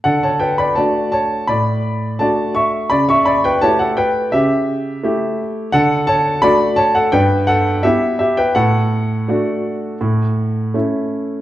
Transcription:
<<
  \new Staff \with { instrumentName = "Grand piano" } { \time 4/4 \key d \major \tempo 4 = 84 <a' fis''>16 <cis'' a''>16 <b' g''>16 <d'' b''>16 <d'' a''>8 <cis'' a''>8 <d'' b''>4 <d'' a''>8 <e'' cis'''>8 | <d'' b''>16 <e'' cis'''>16 <d'' b''>16 <b' g''>16 <cis'' a''>16 <a' fis''>16 <b' g''>8 <g' e''>4. r8 | <a' fis''>8 <cis'' a''>8 <d'' b''>8 <cis'' a''>16 <a' fis''>16 <b' g''>8 <a' fis''>8 <g' e''>8 <g' e''>16 <b' g''>16 | <a' fis''>2. r4 | }
  \new Staff \with { instrumentName = "Grand piano" } { \time 4/4 \key d \major d4 <a d' fis'>4 a,4 <a d' fis'>4 | cis4 <a e' g'>4 cis4 <a e' g'>4 | d4 <a d' fis'>4 g,4 <b e'>4 | a,4 <a d' fis'>4 a,4 <a cis' e'>4 | }
>>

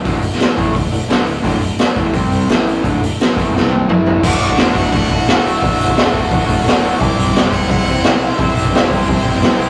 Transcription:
<<
  \new Staff \with { instrumentName = "Harmonica" } { \time 4/4 \key d \mixolydian \tempo 4 = 173 r1 | r1 | r1 | d''4. fis''8 fis''4. e''8~ |
e''4. r2 r8 | d''4. fis''8 fis''4. e''8~ | e''4. r2 r8 | }
  \new Staff \with { instrumentName = "Transistor combo organ" } { \time 4/4 \key d \mixolydian <a' d'' fis''>8 <a' d'' fis''>8 <a' d'' a''>8 <a' d'' fis''>8 <a' d'' fis''>8 <a' d'' fis''>8 <a' d'' fis'' a''>8 <a' d'' e'' fis''>8 | <a' d'' fis''>8 <a' d'' fis''>8 <a' d'' fis''>8 <a' d'' fis''>8 <g' c'' g''>8 <g' c'' g''>8 <a' e'' a''>8 <a' e'' g''>8 | <a' d'' fis''>8 <a' d'' fis''>8 <a' d'' fis''>8 <a' d'' fis''>8 <g' c'' g''>8 <g' c'' g''>8 <e' a' e''>8 <e' a' b'>8 | <fis' a' d''>8 <fis' a' d''>8 <fis' a' d''>8 <fis' a' e''>8 <fis' a' b'>8 <fis' a' d''>8 <fis' a' d''>8 <fis' a' d''>8 |
<fis' a' e''>8 <fis' a' d''>8 <fis' a' d''>8 <fis' a' d''>8 <fis' a' d''>8 <fis' a' c''>8 <fis' a' d''>8 <fis' a' d''>8 | <g' c'' e''>8 <g' c'' e''>8 <g' c'' fis''>8 <g' c'' e''>8 <g' c'' e''>8 <g' c'' g''>8 <g' c'' e''>8 <g' c'' e''>8 | <g' c'' e''>8 <g' c'' e''>8 <g' c'' e''>8 <g' c'' d'' e''>8 <g' c'' e''>8 <g' c'' e'' g''>8 <g' c'' e'' a''>8 <g' c'' e'' b''>8 | }
  \new Staff \with { instrumentName = "Overdriven electric guitar" } { \time 4/4 \key d \mixolydian <d, a, d>8 <d, a,>8 r8 <a, e a>8 <d, a,>8 <d, a,>8 <d, a, d>8 <d, a,>8 | <d, a, d>8 <d, a,>8 r8 <a, e a>8 <c g c'>4 <a, e a>4 | <d, a, d>8 <d, a,>8 r8 <a, e a>8 <c g c'>4 <a, e a>4 | <d, a, d a fis'>8 <d a fis'>8 <a, d a fis'>8 <d, a, d a fis'>8 <a, d a fis'>8 <d, a, d a fis'>8 <a, d a fis'>8 <d a fis'>8 |
<d, a, d a fis'>8 <d a fis'>8 <a, d a fis'>8 <d, a, d a fis'>8 <a, d a fis'>8 <d, a, d a fis'>8 <a, d a fis'>8 <d a fis'>8 | <c g c' e' g' c''>8 <c' e' g' c''>8 <c' e' g' c''>8 <c g c' e' g' c''>8 <c' e' g' c''>8 <c g c' e' g' c''>8 <c' e' g' c''>8 <c' e' g' c''>8 | <c g c' e' g' c''>8 <c' e' g' c''>8 <c' e' g' c''>8 <c g c' e' g' c''>8 <c' e' g' c''>8 <c g c' e' g' c''>8 <c' e' g' c''>8 <c' e' g' c''>8 | }
  \new Staff \with { instrumentName = "Fingered electric bass" } { \clef bass \time 4/4 \key d \mixolydian d,,8 d,,8 r8 a,,8 d,,8 d,,8 d,,8 d,,8 | d,,8 d,,8 r8 a,,8 c,4 a,,4 | d,,8 d,,8 r8 a,,8 c,4 a,,4 | d,,8 d,,8 d,,8 fis,,8 d,,8 d,,8 d,,8 d,,8 |
d,,8 d,,8 d,,8 d,,8 d,,8 d,,8 d,,8 d,,8 | c,8 c,8 c,8 e,,8 c,8 c,8 c,8 c,8 | c,8 c,8 c,8 c,8 c,8 c,8 c,8 c,8 | }
  \new DrumStaff \with { instrumentName = "Drums" } \drummode { \time 4/4 <hho bd>8 hho16 sn16 <hho sn>8 <hho bd>8 <hho bd>8 hho8 <hho sn>8 hho8 | <hho bd>8 hho8 <hho sn>8 <hho bd>8 <hho bd>8 hho8 <hho sn>8 hho8 | <hho bd>8 hho8 <hho sn>8 <hho bd>8 sn8 tommh8 toml8 tomfh8 | <cymc bd>8 hho16 bd16 <hho sn>8 <hho bd>8 <hho bd>8 <hho bd>8 <hho sn>8 hho8 |
<hho bd>8 hho16 bd16 <hho sn>8 <hho bd>8 <hho bd>8 <hho bd>8 <hho sn>8 hho8 | <hho bd>8 hho16 bd16 <hho sn>8 <hho bd>8 <hho bd>8 <hho bd>8 <hho sn>8 hho8 | <hho bd>8 hho16 bd16 <hho sn>8 <hho bd>8 <hho bd>8 <hho bd>8 <hho sn>8 hho8 | }
>>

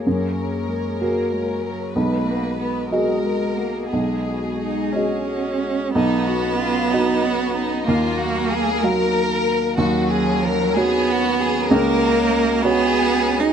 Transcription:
<<
  \new Staff \with { instrumentName = "Violin section" } { \time 6/8 \key ces \lydian \tempo 4. = 63 bes'2. | b'4. bes'4. | gis'2~ gis'8 r8 | dis'8 fis'8 f'8 dis'8 fis'8 dis'8 |
f'8 ges'8 aes'8 bes'4. | fis'8 aes'8 bes'8 aes'8 fis'8 aes'8 | bes'4. aes'4. | }
  \new Staff \with { instrumentName = "Analog synth pad" } { \time 6/8 \key ces \lydian << { <bes des''>2. | <gis dis''>2.~ | <gis dis''>2. | <cis' dis''>2. |
<bes f''>2. | <cis' cis''>2.~ | <cis' cis''>2. | } \\ { aes'2. | fis'2.~ | fis'2. | fis2.~ |
fis2.~ | fis2. | ges'2. | } >> }
  \new Staff \with { instrumentName = "Felt piano" } { \time 6/8 \key ces \lydian ges,4. <ges' aes' bes'>4. | b,,4. <fis' gis' dis''>4. | b,,4. <fis' gis' dis''>4. | b,,4. <fis' dis''>4. |
ees,4. <ges' f''>4. | dis,4. <fis' cis''>4. | des,4. <ges' des''>4. | }
  \new Staff \with { instrumentName = "Cello" } { \time 6/8 \key ces \lydian ges8 ges8 aes8 bes8 aes8 ges8 | gis8 bes8 b8 fis8 gis8 bes8 | b4 dis'8 des'4. | b2. |
bes4. ges8 r4 | fis4. b4. | bes4. ces'4~ ces'16 ees'16 | }
>>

